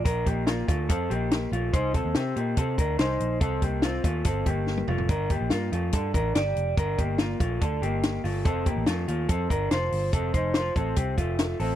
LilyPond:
<<
  \new Staff \with { instrumentName = "Clean electric guitar" } { \time 4/4 \key c \dorian \tempo 4 = 143 <d' bes'>8 <bes g'>8 <bes f'>8 <a f'>8 <c' a'>8 <bes g'>4 <a f'>8 | <ees' c''>8 <c' a'>8 <c' g'>8 <bes g'>8 <c' a'>8 <d' bes'>8 <ees' c''>4 | <c' a'>8 <bes g'>8 <c' f'>8 <a f'>8 <c' a'>8 <bes g'>4 <a f'>8 | <d' bes'>8 <bes g'>8 <bes f'>8 <a f'>8 <d' a'>8 <d' bes'>8 <g' d''>4 |
<d' bes'>8 <bes g'>8 <bes f'>8 <a f'>8 <d' a'>8 <bes g'>4 <a f'>8 | <c' a'>8 <bes g'>8 <a f'>8 <a f'>8 <c' a'>8 <d' bes'>8 <f' c''>4 | <c' a'>8 <ees' c''>8 <f' c''>8 <c' a'>8 <c' g'>8 <a f'>4 <c' a'>8 | }
  \new Staff \with { instrumentName = "Picked electric bass" } { \clef bass \time 4/4 \key c \dorian bes,,8 bes,,4 d,8 f,8 bes,,4 bes,,8 | c,8. ees,16 c8 bes,8 c8 d,8 c,8 bes,,8 | c,8 c,4 ees,8 g,,8 g,,4 f,,8 | g,,8. bes,,16 g,8 f,8 g,8 a,,8 g,,8 f,,8 |
g,,8 g,,4 bes,,8 d,8 g,,4 g,,8 | f,,8. a,,16 f,8 ees,8 f,8 g,,8 f,,8 g,,8 | f,,8 f,,4 a,,8 c,8 f,,4 a,,8 | }
  \new DrumStaff \with { instrumentName = "Drums" } \drummode { \time 4/4 <hh bd>8 <hh bd>8 <hh sn>8 <hh bd>8 <hh bd>8 hh8 <hh sn>8 hh8 | <hh bd>8 <hh bd>8 <hh sn>8 hh8 <hh bd>8 <hh bd>8 <hh sn>8 hh8 | <hh bd>8 <hh bd>8 <hh sn>8 <hh bd>8 <hh bd>8 <hh bd>8 sn16 tommh16 toml16 tomfh16 | <hh bd>8 <hh bd>8 <hh sn>8 hh8 <hh bd>8 <hh bd>8 <hh sn>8 hh8 |
<hh bd>8 <hh bd>8 <hh sn>8 <hh bd>8 <hh bd>8 hh8 <hh sn>8 hho8 | <hh bd>8 <hh bd>8 <hh sn>8 hh8 <hh bd>8 <hh bd>8 <hh sn>8 hho8 | <hh bd>8 <hh bd>8 <hh sn>8 <hh bd>8 <hh bd>8 <hh bd>8 <hh sn>8 hho8 | }
>>